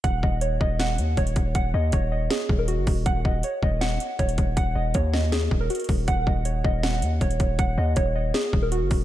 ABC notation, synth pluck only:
X:1
M:4/4
L:1/16
Q:1/4=159
K:Ebm
V:1 name="Synth pluck"
g2 e2 d2 e2 g4 d4 | g2 e2 d2 e2 A3 B G4 | g2 e2 d2 e2 g4 d4 | g2 e2 d2 e2 A3 B G4 |
g2 e2 d2 e2 g4 d4 | g2 e2 d2 e2 A3 B G4 |]